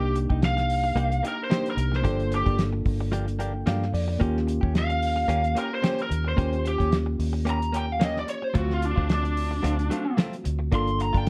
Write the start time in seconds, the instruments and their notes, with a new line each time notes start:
Already playing: fingered electric bass C2, tine electric piano A#3 D4 D#4 G4, lead electric guitar G4
0.15 muted clean electric guitar stroke, closed hi-hat
0.30 fingered electric bass C2, clean electric guitar D#4 G4, kick
0.42 lead electric guitar F5, muted clean electric guitar stroke, snare, closed hi-hat
0.57 muted clean electric guitar stroke, snare, closed hi-hat
0.70 open hi-hat
0.84 muted clean electric guitar stroke
0.95 fingered electric bass C2, clean electric guitar A#3 D#4 G4, closed hi-hat
1.11 muted clean electric guitar stroke, closed hi-hat
1.23 clean electric guitar A#3 D#4 G4, closed hi-hat
1.28 lead electric guitar A#4
1.38 muted clean electric guitar stroke
1.44 lead electric guitar C5
1.49 tine electric piano A#3 D4 D#4 G4, clean electric guitar A#3 D#4 G4, snare, closed hi-hat
1.66 closed hi-hat
1.71 lead electric guitar A#4
1.77 fingered electric bass C2, muted clean electric guitar stroke, closed hi-hat
1.92 muted clean electric guitar stroke, snare
1.97 lead electric guitar C5
2.02 fingered electric bass G1, clean electric guitar F3 A#3 D4 G4, tine electric piano A#3 D4 F4 A4, kick, closed hi-hat
2.20 closed hi-hat
2.31 lead electric guitar G4, muted clean electric guitar stroke, closed hi-hat
2.46 fingered electric bass G1, clean electric guitar A#3 D4 G4, kick, closed hi-hat
2.58 muted clean electric guitar stroke, snare, closed hi-hat
2.73 muted clean electric guitar stroke
2.86 fingered electric bass G1, kick, open hi-hat
3.01 muted clean electric guitar stroke
3.12 clean electric guitar F3 A#3 D4 G4, closed hi-hat
3.27 muted clean electric guitar stroke, closed hi-hat
3.39 clean electric guitar F3 A#3 D4 G4, tine electric piano G5, closed hi-hat
3.54 muted clean electric guitar stroke
3.66 fingered electric bass G2, clean electric guitar F3 A#3 D4 G4, tine electric piano F5, snare, closed hi-hat
3.82 snare
3.93 fingered electric bass F2, tine electric piano D5, muted clean electric guitar stroke, open hi-hat
4.08 muted clean electric guitar stroke
4.19 fingered electric bass D#2, tine electric piano A#3 C#4 F4 G4, clean electric guitar A#3 C#4 G4, kick, closed hi-hat
4.37 snare
4.47 muted clean electric guitar stroke, closed hi-hat
4.61 fingered electric bass D#2, clean electric guitar C#4 G4, kick
4.74 muted clean electric guitar stroke, snare, closed hi-hat
4.79 lead electric guitar F5
4.89 muted clean electric guitar stroke, closed hi-hat
5.02 open hi-hat
5.16 muted clean electric guitar stroke
5.28 fingered electric bass D#2, clean electric guitar A#3 C#4 G4, closed hi-hat
5.43 muted clean electric guitar stroke, closed hi-hat
5.55 clean electric guitar A#3 C#4 G4, lead electric guitar A#4, closed hi-hat
5.71 muted clean electric guitar stroke
5.75 lead electric guitar C5
5.82 clean electric guitar A#3 C#4 G4, snare, closed hi-hat
5.99 lead electric guitar A#4, closed hi-hat
6.09 fingered electric bass D#2, muted clean electric guitar stroke, closed hi-hat
6.25 lead electric guitar C5, muted clean electric guitar stroke
6.36 fingered electric bass D#2, tine electric piano A#3 C#4 F4 G4, clean electric guitar A#3 C#4 G4, kick, closed hi-hat
6.53 closed hi-hat
6.64 lead electric guitar G4, muted clean electric guitar stroke, closed hi-hat
6.78 fingered electric bass D#2, clean electric guitar C#4 G4, kick, closed hi-hat
6.91 muted clean electric guitar stroke, snare, closed hi-hat
7.06 muted clean electric guitar stroke
7.19 fingered electric bass D#2, open hi-hat
7.33 muted clean electric guitar stroke
7.45 clean electric guitar A#3 C#4 G4, closed hi-hat
7.50 lead electric guitar A#5
7.60 muted clean electric guitar stroke, closed hi-hat
7.72 clean electric guitar A#3 C#4 G4, closed hi-hat
7.77 lead electric guitar G5
7.87 muted clean electric guitar stroke
7.92 lead electric guitar F5
8.00 clean electric guitar A#3 C#4 G4, snare, closed hi-hat
8.04 lead electric guitar D#5
8.16 lead electric guitar D5, snare
8.27 lead electric guitar C#5, muted clean electric guitar stroke, closed hi-hat
8.42 lead electric guitar C5, muted clean electric guitar stroke
8.54 fingered electric bass D2, clean electric guitar F#3 A3 C4 F4, tine electric piano A3 C4 F4 F#4, lead electric guitar F#4, kick, closed hi-hat
8.70 lead electric guitar F4, snare
8.81 lead electric guitar D4, muted clean electric guitar stroke, closed hi-hat
8.96 fingered electric bass D2, clean electric guitar A3 C4 F4, kick
9.08 muted clean electric guitar stroke, snare, closed hi-hat
9.13 lead electric guitar D4
9.23 muted clean electric guitar stroke, closed hi-hat
9.37 open hi-hat
9.51 muted clean electric guitar stroke
9.63 fingered electric bass D2, clean electric guitar F#3 A3 C4 F4, closed hi-hat
9.78 muted clean electric guitar stroke, closed hi-hat
9.90 clean electric guitar F#3 A3 C4 F4, closed hi-hat
10.05 muted clean electric guitar stroke
10.17 clean electric guitar F#3 A3 C4 F4, snare, closed hi-hat
10.33 closed hi-hat
10.44 fingered electric bass D2, muted clean electric guitar stroke, closed hi-hat
10.59 muted clean electric guitar stroke
10.71 fingered electric bass G1, tine electric piano A#3 D4 F4 A4, clean electric guitar A#3 D4 F4, kick, closed hi-hat
10.75 lead electric guitar C6
10.88 closed hi-hat
10.99 lead electric guitar A#5, muted clean electric guitar stroke, closed hi-hat
11.13 fingered electric bass G1, clean electric guitar D4 F4, kick, closed hi-hat
11.17 lead electric guitar G5
11.25 muted clean electric guitar stroke